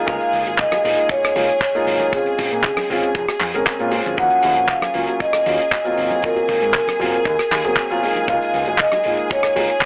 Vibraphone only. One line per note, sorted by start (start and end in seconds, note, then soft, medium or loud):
0.08 0.56 F5 loud
0.59 1.07 D#5 loud
1.11 2.16 C#5 loud
2.13 3.63 G#4 medium
4.19 4.71 F#5 loud
4.70 5.22 F5 loud
5.21 6.27 D#5 loud
6.23 7.73 A#4 medium
8.28 8.76 F5 loud
8.80 9.27 D#5 loud
9.31 9.79 C#5 medium